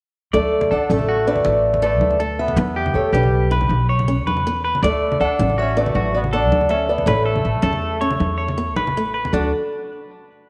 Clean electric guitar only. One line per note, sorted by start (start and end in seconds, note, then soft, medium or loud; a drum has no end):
0.33 0.69 D5 medium
0.71 1.06 A4 medium
1.09 1.44 F#4 medium
1.46 muted clean electric guitar stroke medium
1.83 2.18 A4 medium
2.20 2.56 A4 medium
2.58 muted clean electric guitar stroke medium
2.76 3.12 G4 medium
3.13 3.49 G4 medium
3.52 3.87 B4 medium
3.89 4.25 C#5 medium
4.27 4.62 B4 medium
4.65 4.82 B4 medium
4.83 5.19 D5 medium
5.21 5.56 A4 medium
5.58 5.93 F#4 medium
5.95 6.31 F#4 medium
6.33 6.68 A4 medium
6.71 7.06 A4 medium
7.08 7.25 B4 medium
7.25 7.62 A4 medium
7.63 7.99 A4 medium
8.01 8.36 C#5 medium
8.38 8.74 C#5 medium
8.77 9.13 B4 medium
9.14 9.32 B4 medium
9.33 9.51 D4 medium